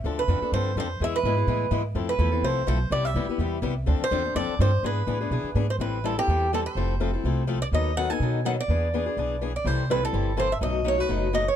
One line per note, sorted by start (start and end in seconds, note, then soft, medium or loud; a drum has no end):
0.04 0.27 D2 medium
0.04 0.22 D3 medium
0.04 0.22 F3 medium
0.04 0.22 C4 medium
0.04 0.22 D4 medium
0.04 0.22 A4 medium
0.19 0.50 B4 medium
0.28 0.40 F2 medium
0.28 0.38 D3 medium
0.28 0.38 F3 medium
0.28 0.38 C4 medium
0.28 0.38 D4 medium
0.28 0.38 A4 medium
0.41 0.53 C4 soft
0.41 0.52 D4 medium
0.41 0.52 A4 medium
0.41 muted upright bass stroke soft
0.52 0.75 G2 medium
0.52 0.70 D3 medium
0.52 0.71 F3 medium
0.52 0.71 C4 medium
0.52 0.71 D4 medium
0.52 0.71 A4 medium
0.52 0.75 C5 medium
0.75 0.99 F2 medium
0.75 0.86 D3 medium
0.75 0.86 F3 medium
0.75 0.86 C4 medium
0.75 0.87 D4 medium
0.75 0.87 A4 medium
0.80 1.02 C5 medium
1.00 1.23 E2 medium
1.00 1.18 E3 medium
1.00 1.18 G#3 medium
1.00 1.18 B3 medium
1.00 1.18 E4 medium
1.00 1.18 G#4 medium
1.00 1.15 E5 medium
1.16 1.82 B4 medium
1.23 1.47 G#2 medium
1.23 1.34 E3 medium
1.23 1.34 G#3 medium
1.23 1.34 B3 medium
1.23 1.34 E4 medium
1.23 1.35 G#4 loud
1.37 1.47 B3 soft
1.37 1.47 E4 medium
1.37 1.47 G#4 medium
1.47 1.70 A2 medium
1.47 1.65 E3 medium
1.47 1.65 G#3 medium
1.47 1.65 B3 medium
1.47 1.65 E4 medium
1.47 1.66 G#4 medium
1.71 1.94 G#2 medium
1.71 1.81 E3 medium
1.71 1.81 G#3 medium
1.71 1.81 B3 medium
1.71 1.81 E4 medium
1.71 1.81 G#4 loud
1.95 2.18 F2 medium
1.95 2.13 F3 medium
1.95 2.13 A3 medium
1.95 2.13 C4 medium
1.95 2.13 E4 medium
1.95 2.13 A4 medium
2.09 2.45 B4 medium
2.19 2.41 E2 medium
2.19 2.29 F3 medium
2.19 2.29 A3 medium
2.19 2.29 C4 medium
2.19 2.29 E4 medium
2.19 2.29 A4 medium
2.32 2.43 C4 soft
2.32 2.43 E4 medium
2.32 2.43 A4 medium
2.42 2.66 C2 medium
2.42 2.61 F3 medium
2.42 2.61 A3 medium
2.42 2.62 C4 medium
2.42 2.62 E4 medium
2.42 2.61 A4 medium
2.42 2.67 C5 medium
2.67 2.90 B1 medium
2.67 2.77 F3 loud
2.67 2.77 A3 medium
2.67 2.77 C4 medium
2.67 2.77 E4 medium
2.67 2.77 A4 loud
2.67 2.92 C5 medium
2.90 3.14 C2 medium
2.90 3.09 C3 medium
2.90 3.09 G3 medium
2.90 3.09 B3 medium
2.90 3.09 E4 medium
2.90 3.09 G4 medium
2.90 3.05 D5 medium
3.05 3.77 E5 medium
3.15 3.27 D2 medium
3.15 3.25 C3 medium
3.15 3.25 G3 medium
3.15 3.26 B3 medium
3.15 3.25 E4 medium
3.15 3.26 G4 medium
3.28 3.39 B3 medium
3.28 3.39 E4 medium
3.28 3.39 G4 medium
3.28 muted upright bass stroke soft
3.38 3.61 E2 medium
3.38 3.57 C3 medium
3.38 3.57 G3 medium
3.38 3.57 B3 medium
3.38 3.57 E4 medium
3.38 3.58 G4 medium
3.62 3.86 C2 medium
3.62 3.72 C3 medium
3.62 3.73 G3 loud
3.62 3.73 B3 medium
3.62 3.73 E4 medium
3.62 3.73 G4 medium
3.86 3.99 D2 medium
3.86 4.04 D3 medium
3.86 4.05 F3 medium
3.86 4.05 C4 medium
3.86 4.05 D4 medium
3.86 4.05 A4 medium
4.00 4.35 C5 medium
4.00 muted upright bass stroke soft
4.11 4.35 E2 medium
4.11 4.21 D3 medium
4.11 4.21 F3 medium
4.11 4.21 C4 medium
4.11 4.21 D4 medium
4.11 4.22 A4 loud
4.25 4.35 C4 medium
4.25 4.35 D4 medium
4.25 4.35 A4 medium
4.35 4.48 F2 medium
4.35 4.53 D3 medium
4.35 4.53 F3 medium
4.35 4.53 C4 medium
4.35 4.53 D4 medium
4.35 4.54 A4 medium
4.35 4.60 D5 loud
4.49 muted upright bass stroke soft
4.59 4.82 G2 medium
4.59 4.70 D3 medium
4.59 4.70 F3 medium
4.59 4.70 C4 loud
4.59 4.70 D4 medium
4.59 4.70 A4 medium
4.59 4.83 C5 medium
4.83 5.06 G#2 medium
4.83 5.01 E3 medium
4.83 5.01 B3 medium
4.83 5.01 D4 medium
4.83 5.02 G#4 medium
4.83 5.53 B4 medium
5.07 5.30 A2 medium
5.07 5.17 E3 medium
5.07 5.17 B3 medium
5.07 5.17 D4 loud
5.07 5.17 G#4 medium
5.21 5.30 B3 soft
5.21 5.31 D4 medium
5.21 5.31 G#4 medium
5.31 5.43 B2 medium
5.31 5.49 E3 medium
5.31 5.49 B3 medium
5.31 5.49 D4 medium
5.31 5.50 G#4 medium
5.44 muted upright bass stroke soft
5.55 5.78 G#2 medium
5.55 5.65 E3 medium
5.55 5.65 B3 medium
5.55 5.65 D4 medium
5.55 5.66 G#4 medium
5.70 5.75 C5 medium
5.79 6.17 A1 medium
5.79 5.97 E3 medium
5.79 5.97 G3 medium
5.79 5.98 C4 medium
5.79 5.98 E4 medium
5.79 5.98 A4 medium
5.79 6.05 B4 medium
6.04 6.14 E3 medium
6.04 6.14 G3 medium
6.04 6.14 C4 medium
6.04 6.14 E4 medium
6.04 6.14 A4 medium
6.04 6.18 A4 medium
6.18 6.28 C4 soft
6.18 6.28 E4 soft
6.18 6.50 G4 loud
6.18 6.28 A4 medium
6.28 6.66 E2 medium
6.28 6.46 E3 medium
6.28 6.46 G3 medium
6.28 6.46 C4 medium
6.28 6.46 E4 medium
6.28 6.47 A4 medium
6.53 6.62 E3 medium
6.53 6.62 G3 medium
6.53 6.62 C4 medium
6.53 6.63 E4 medium
6.53 6.63 A4 medium
6.53 6.59 A4 medium
6.66 7.58 C5 medium
6.75 7.14 F1 medium
6.75 6.94 F3 medium
6.75 6.94 A3 medium
6.75 6.94 C4 medium
6.75 6.94 E4 medium
6.75 6.94 A4 medium
7.00 7.10 F3 medium
7.00 7.10 A3 medium
7.00 7.10 C4 medium
7.00 7.10 E4 medium
7.00 7.10 A4 medium
7.13 7.24 C4 soft
7.13 7.24 E4 soft
7.13 7.24 A4 medium
7.24 7.62 C2 medium
7.24 7.42 F3 medium
7.24 7.42 A3 medium
7.24 7.42 C4 medium
7.24 7.43 E4 medium
7.24 7.43 A4 medium
7.47 7.58 F3 medium
7.47 7.58 A3 medium
7.47 7.58 C4 medium
7.47 7.58 E4 medium
7.47 7.58 A4 medium
7.62 7.67 D5 medium
7.72 8.10 D#2 medium
7.72 7.90 D#3 medium
7.72 7.90 F#3 medium
7.72 7.90 B3 medium
7.72 7.91 D#4 medium
7.72 7.91 A4 medium
7.72 7.97 D#5 medium
7.97 8.06 D#3 medium
7.97 8.07 F#3 medium
7.97 8.07 B3 medium
7.97 8.07 D#4 medium
7.97 8.07 A4 medium
7.97 8.10 F#5 loud
8.10 8.21 B3 soft
8.10 8.20 D#4 medium
8.10 8.20 A4 medium
8.10 8.46 G#5 loud
8.20 8.59 B2 medium
8.20 8.39 D#3 medium
8.20 8.39 F#3 medium
8.20 8.39 B3 medium
8.20 8.39 D#4 medium
8.20 8.39 A4 medium
8.45 8.55 D#3 medium
8.45 8.55 F#3 medium
8.45 8.55 B3 medium
8.45 8.55 D#4 medium
8.45 8.55 A4 medium
8.45 8.51 F#5 medium
8.60 9.51 D5 medium
8.68 9.07 E2 medium
8.68 8.87 E3 medium
8.68 8.87 B3 medium
8.68 8.87 D4 medium
8.68 8.87 G#4 medium
8.94 9.03 E3 medium
8.94 9.03 B3 medium
8.94 9.04 D4 medium
8.94 9.04 G#4 medium
9.06 9.17 B3 soft
9.06 9.17 D4 soft
9.06 9.16 G#4 medium
9.17 9.55 B1 medium
9.17 9.35 E3 medium
9.17 9.35 B3 medium
9.17 9.35 D4 medium
9.17 9.36 G#4 medium
9.41 9.51 E3 medium
9.41 9.51 B3 medium
9.41 9.51 D4 medium
9.41 9.52 G#4 medium
9.56 9.67 D5 medium
9.65 10.03 C2 medium
9.65 9.83 C3 medium
9.65 9.83 E3 medium
9.65 9.83 G3 medium
9.65 9.83 C4 medium
9.65 9.83 E4 medium
9.65 9.84 A4 medium
9.65 9.90 C5 medium
9.90 9.99 C3 medium
9.90 9.99 E3 medium
9.90 9.99 G3 medium
9.90 10.00 C4 medium
9.90 9.99 E4 medium
9.90 10.00 A4 medium
9.90 10.02 B4 medium
10.03 10.13 G3 soft
10.03 10.12 C4 medium
10.03 10.13 E4 medium
10.03 10.13 A4 medium
10.03 10.36 A4 medium
10.13 10.52 G1 medium
10.13 10.31 C3 medium
10.13 10.31 E3 medium
10.13 10.31 G3 medium
10.13 10.31 C4 medium
10.13 10.31 E4 medium
10.13 10.31 A4 medium
10.37 10.47 C3 medium
10.37 10.47 E3 medium
10.37 10.47 G3 medium
10.37 10.47 C4 medium
10.37 10.47 E4 medium
10.37 10.47 A4 medium
10.37 10.52 C5 medium
10.52 10.57 E5 medium
10.61 11.00 B1 medium
10.61 10.79 B2 medium
10.61 10.79 F#3 medium
10.61 10.79 A3 medium
10.61 10.79 D#4 medium
10.61 10.79 F#4 medium
10.61 10.86 D#5 medium
10.84 10.95 B2 medium
10.84 10.95 F#3 medium
10.84 10.95 A3 medium
10.84 10.95 D#4 medium
10.84 10.95 F#4 medium
10.84 11.00 C#5 medium
10.98 11.08 A3 soft
10.98 11.08 D#4 medium
10.98 11.09 F#4 medium
10.98 11.34 B4 loud
11.09 11.48 F#1 medium
11.09 11.27 B2 medium
11.09 11.27 F#3 medium
11.09 11.27 A3 medium
11.09 11.27 D#4 medium
11.09 11.27 F#4 medium
11.33 11.43 B2 medium
11.33 11.43 F#3 medium
11.33 11.44 A3 medium
11.33 11.44 D#4 medium
11.33 11.43 F#4 medium
11.33 11.46 D#5 medium
11.48 11.56 C#5 medium